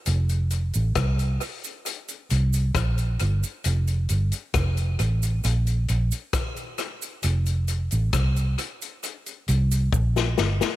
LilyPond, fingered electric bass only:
\new Staff \with { instrumentName = "Fingered electric bass" } { \clef bass \time 4/4 \key f \major \tempo 4 = 67 f,,8. a,,16 c,8 r4 c,8 bes,,8 g,,16 r16 | f,,8 g,,16 r16 f,,8 a,,8 bes,,8 bes,,16 r4 r16 | f,,8. a,,16 c,8 r4 c,8 bes,,8 g,,16 r16 | }